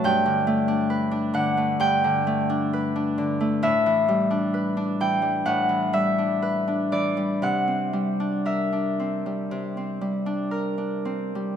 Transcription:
harp
Already playing: A3 B4 D5 A5
0.04 G2 G5
0.26 D3
0.47 A3
0.68 D4
0.90 B4
1.11 D4
1.34 D3 F#5
1.57 A3
1.80 G2 G5
2.04 D3
2.27 A3
2.50 D4
2.73 B4
2.96 D4
3.18 D3
3.40 A3
3.62 A2 E5
3.86 E3
4.08 G3
4.30 D4
4.54 B4
4.77 D4
5.00 E3 G5
5.22 G3
5.46 A2 F#5
5.69 E3
5.93 G3 E5
6.18 D4
6.42 B4
6.67 D4
6.92 E3 D5
7.17 G3
7.42 C3 F#5
7.68 C4
7.93 G3
8.20 D4
8.46 A#4 E5
8.73 D4
9.00 C4
9.26 G3
9.51 C3
9.77 C4
10.01 G3
10.26 D4
10.51 A#4
10.78 D4
11.05 C4
11.35 G3

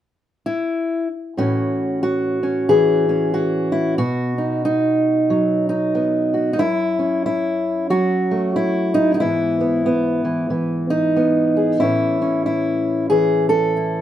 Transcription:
steel-string acoustic guitar
0.46 E4
1.37 A2 E3 C#4 F#4
2.03 F#4
2.43 C#4
2.69 E3 G#4
3.09 C#4
3.34 F#4
3.72 E4
3.98 B2 F#4
4.38 D#4
4.65 D#4
5.30 F#3
5.69 D#4
5.95 B3
6.34 F#4
6.53 D#4
6.59 F#2 E4
6.99 C#4
7.26 E4
7.90 F#3 F#4
8.31 A3
8.56 E4
8.94 D#4
9.14 D#4
9.20 G#2 E3 B3 E4
9.61 B3
9.86 B3
10.25 E3
10.50 E3
10.90 D#4
11.17 B3
11.57 G#4
11.80 A2 E3 C#4 E4
12.22 C#4
12.46 E4
13.10 E3 G#4
13.49 A4
13.77 E4

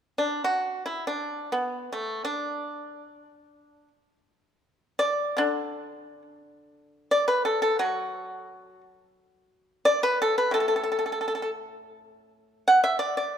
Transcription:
pipa
0.18 D4
0.44 F#4
0.86 E4
1.07 D4
1.52 B3
1.92 A3
2.25 D4
4.99 D5
5.37 D3 D4
7.11 D5
7.28 B4
7.45 A4
7.62 A4
7.79 F#3 F#4
9.85 D5
10.03 B4
10.22 A4
10.38 B4
10.51 A2 A4
10.60 A4
10.68 A4
10.76 A4
10.83 A4
10.92 A4
10.99 A4
11.06 A4
11.12 A4
11.21 A4
11.28 A4
11.35 A4
11.42 A4
12.68 F#5
12.84 E5
12.99 D5
13.17 D5

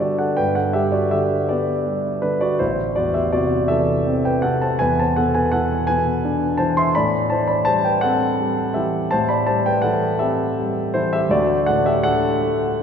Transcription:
grand piano
Already playing: G2 D3 G3 B3 G4 B4 C5 E5 G5 A5
0.00 D3 F#4 D5
0.19 A4 F#5
0.37 G2 B4 G5
0.55 A4 F#5
0.73 G3 G4 E5
0.92 F#4 D5
1.11 D3 G4 E5
1.49 B3 G4 D5
1.87 G3
2.22 D3 D4 B4
2.41 F#4 D5
2.59 A1 E4 C5
2.96 E2 F#4 D5
3.14 G4 E5
3.32 C3 F#4 D5
3.68 E3 A4 E5
4.07 C4
4.25 B4 G5
4.42 C3 A4 F#5
4.62 C5 A5
4.79 E2 B4 G#5
4.99 C5 A5
5.16 B2 A4 F#5
5.35 B4 G#5
5.52 E3 A4 F#5
5.87 B2 B4 G#5
6.25 D4
6.58 E3 C5 A5
6.77 E5 C6
6.95 A2 D5 B5
7.30 E3 C5 A5
7.47 D5 B5
7.65 G3 C5 A5
7.85 B4 G5
8.01 C4 A4 F#5
8.41 G3
8.74 E3 G4 E5
9.11 A2 C5 A5
9.29 D5 B5
9.47 G3 C5 A5
9.66 B4 G5
9.82 E3 A4 F#5
10.19 C4 G4 E5
10.58 G3
10.94 E3 E4 C5
11.13 G4 E5
11.29 D2 F#4 D5
11.66 A2 A4 F#5
11.86 G4 E5
12.03 D3 A4 F#5
12.42 A3

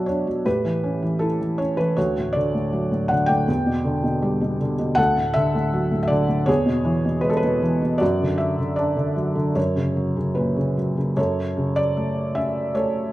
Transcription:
felt piano
Already playing: B2 F#3 D4 F#4 C#5 D5 E5
0.06 D4 C#5
0.27 F#3
0.45 A2 G4 B4
0.65 E3
0.83 C#4
1.02 E3
1.19 E4 A4
1.41 E3
1.58 C#4 C#5
1.77 E3 B4
1.97 D2 F#4 C#5
2.18 A2
2.33 D3 D5
2.54 A2
2.73 F#3
2.92 A2
3.08 D3 F#5
3.26 A2 D5 G5
3.48 E2
3.66 B2
3.84 D3
4.03 B2
4.22 G3
4.41 B2
4.61 D3
4.79 B2
4.95 D2 A4 F#5
5.17 A2
5.34 D3 E5
5.55 A2
5.73 F#3
5.92 A2
6.03 E5
6.08 D3 D5
6.29 A2
6.46 E2 G#4 C#5
6.66 B2
6.85 E3
7.05 B2
7.21 G#3 B4
7.29 A4
7.37 B4
7.43 B2
7.62 E3
7.82 B2
7.98 F#2 F#4 D5
8.22 D3
8.38 F#3 E5
8.58 D3
8.76 D4 D5
8.97 D3
9.16 F#3
9.35 D3
9.55 F#2 A#4 C#5
9.76 C#3
9.96 F#3
10.17 C#3
10.35 A#2 B4
10.57 C#3
10.77 F#3
10.97 C#3
11.17 F#2 A4 C#5
11.57 C#3
11.76 D5
11.97 A3
12.35 C#4 E5
12.75 A3 A4 C#5

